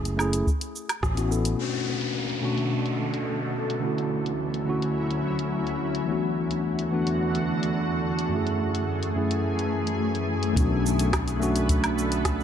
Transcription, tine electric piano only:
Already playing: A3 C#4 E4 G#4
0.17 A3 C#4 E4 G#4
1.15 B3 C#4 E4 F#4
1.28 B3 C#4 E4 A4
1.55 B2 A3 C#4
1.60 D4 F#4
2.41 B2 A3 C#4 D4 F#4
3.80 D3 A3 C#4
3.85 E4 F#4
4.66 D3 A3 C#4 E4 F#4
6.05 E3 A3 B3
6.10 D4 F#4
6.91 E3 A3 B3 D4 F#4
8.29 F#2 A3 C#4
8.34 E4 G#4
9.15 F#2 A3 C#4 E4 G#4
10.53 A3 C#4
10.58 D4 F#4
11.40 A3 C#4 D4 F#4

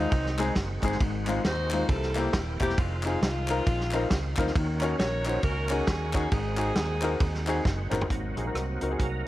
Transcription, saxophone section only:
Already playing: F#3 C4 D#4
1.46 D#4 F#4 C5
1.88 E4 A4
2.60 G4
2.78 G#3 C4 F4
3.22 G#3 C4 F4
4.98 F#4 A#4 C#5
5.43 C#4 F#4 A#4
5.70 C#4 G#4
6.14 F#4
6.32 C4 D#4 G#4

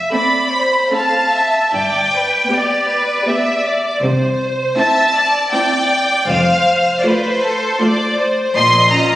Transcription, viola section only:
0.12 C4 A4
0.91 C4 A4
2.50 B3 G4
3.27 B3 G4
4.77 C4 E4
5.53 C4 E4
7.04 A3 F4
7.79 A3 F4
8.92 C#4 F4

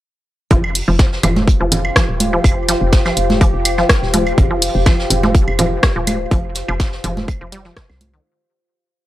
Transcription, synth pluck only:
0.51 F3
0.88 F3
1.23 F3
1.61 F3
1.96 F3
2.33 F3
2.69 F3
3.06 F3
3.41 F3
3.78 F3
4.14 F3
4.51 F3
4.86 F3
5.23 F3
5.59 F3
5.96 F3
6.31 F3
6.68 F3
7.04 F3
7.41 F3
7.52 G3
7.65 F3
7.76 C3
8.14 D#3

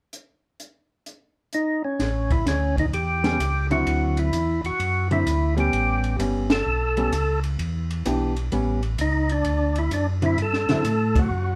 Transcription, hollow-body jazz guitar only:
3.24 G3 B3 C#4
3.70 D3 F#3 C4 E4
5.11 D3 F#3 C4 E4
5.57 G3 B3 C#4
6.19 G3 B3 C#4
6.97 G3 B3 C#4
8.06 E3 B3 D4 G4
8.52 G3 B3 C#4
10.22 D3 F#3 C4 E4
10.69 D3 F#3 C4 E4

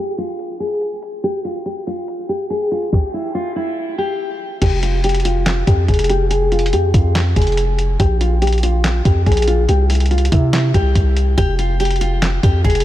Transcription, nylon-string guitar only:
Already playing: G4
0.18 F4
0.60 G#4
1.24 G4
1.45 F4
1.66 G4
1.87 F4
2.29 G4
2.50 G#4
2.71 F4
2.93 G4
3.14 E4
3.35 F4
3.56 E4
3.98 G4
4.62 G4
4.83 F4
5.04 G4
5.25 F4
5.67 G4
5.89 G#4
6.10 G4
6.31 G#4
6.52 F4
6.73 G4
6.94 F4
7.36 G#4
8.00 G4
8.21 F4
8.42 G4
8.63 F4
9.05 G4
9.26 G#4
9.48 F4
9.69 G4
9.90 E4
10.11 F4
10.32 E4
10.74 G4
11.38 G4
11.59 F4
11.80 G4
12.01 F4
12.44 G4
12.65 G#4

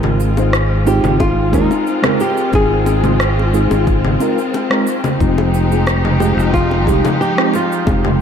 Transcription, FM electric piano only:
Already playing: G#3 C4 D#4 F4 A#4
0.37 G#3 C4 D#4 F4 C5
0.86 G#3 C4 D#4 F4 C5
1.52 G#3 C4 D#4 F4 A#4
2.02 G#3 C4 D#4 F4 A#4
2.52 G#3 C4 D#4 F4 A#4
3.03 G#3 C4 D#4 F4 C5
3.53 G#3 C4 D#4 F4 G#4
4.20 G#3 C4 D#4 F4 A#4
4.70 G#3 C4 D#4 F4 A#4
5.20 G#3 C4 D#4 F4 G4
5.71 G#3 C4 D#4 F4 G#4
6.20 G#3 C4 D#4 F4 G4
6.87 G#3 C4 D#4 F4 G4
7.37 G#3 C4 D#4 F4 G4
7.86 G#3 C4 D#4 F4 G4

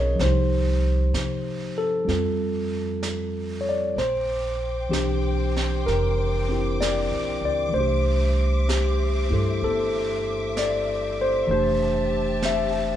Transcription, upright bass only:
Already playing: B1
0.19 C2
1.14 C3
2.08 F2
3.96 A#1
4.92 B1
5.86 F1
7.11 A#1
7.41 C#2
7.73 C2
9.31 G2
9.62 G1
11.48 F1

